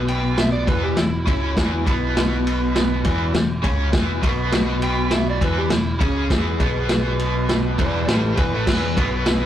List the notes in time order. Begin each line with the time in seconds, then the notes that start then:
Already playing: B1 B2 B3
0.08 G5, ride
0.37 E5, snare, ride
0.52 D5
0.67 E1 E2 E3 B4, kick, ride
0.84 G4
0.96 E1 E2 E4, snare, ride
1.26 C#2 C#3 C#4 E4, kick, ride
1.56 E1 E2 E3, kick, snare, ride
1.86 B1 B2 B3, kick, ride
2.17 snare, ride
2.47 ride
2.75 snare, ride
3.04 E1 E2 E3, kick, ride
3.34 E1 E2, snare, ride
3.62 C#2 C#3 C#4, kick, ride
3.92 E1 E2 E3, kick, snare, ride
4.21 B1 B2 B3, kick, ride
4.52 snare, ride
4.82 G5, ride
5.11 E5, snare, ride
5.30 D5
5.41 E1 E2 E3 B4, kick, ride
5.58 G4
5.70 E1 E2 E4, snare, ride
5.99 C#2 C#3 C#4 G#4, kick, ride
6.30 E1 E2 E3, kick, snare, ride
6.60 B1 B2 B3, kick, ride
6.89 snare, ride
7.19 ride
7.49 snare, ride
7.78 E1 E2 E3 B4 D5, kick, ride
8.08 A1 A2 A3 G4 B4, snare, ride
8.37 E1 E2 E3 B4, kick, ride
8.53 A1 A2 A3
8.65 E1 E2 E3 E4 G#4 B4, kick, snare, crash
8.96 B1 B2 B3 E4 G#4 B4, kick, ride
9.26 E4 G#4 B4, snare, ride